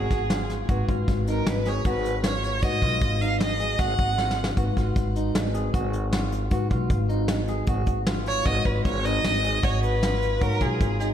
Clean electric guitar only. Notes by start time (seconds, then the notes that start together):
Already playing: F#4
0.31 F4
0.69 F#4
0.88 F4
1.28 D#4
1.67 G#4
1.86 F#4
2.25 F4
2.64 F#4
2.83 F4
3.22 D#4
3.60 G#4
3.79 F#4
4.18 F4
4.57 F#4
4.77 F4
5.16 D#4
5.55 G#4
5.74 F#4
6.13 F4
6.52 F#4
6.71 F4
7.09 D#4
7.49 G#4
7.68 F#4
8.08 F4
8.46 F#4
8.66 F4
9.05 D#4
9.44 G#4
9.63 F#4
10.03 F4
10.41 F#4
10.62 F4
11.00 D#4